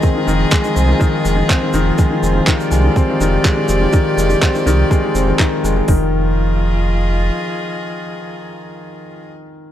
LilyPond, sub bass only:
\new Staff \with { instrumentName = "Sub bass" } { \clef bass \time 4/4 \key f \dorian \tempo 4 = 123 r8 f,,8 r8 c,8 r8 f,,8 r8 f,,8 | r8 f,,8 r8 c,8 r8 f,,8 r8 f,,8 | r8 f,,8 r8 c,8 r8 f,,8 r8 f,,8 | f,,2. r4 |
r1 | }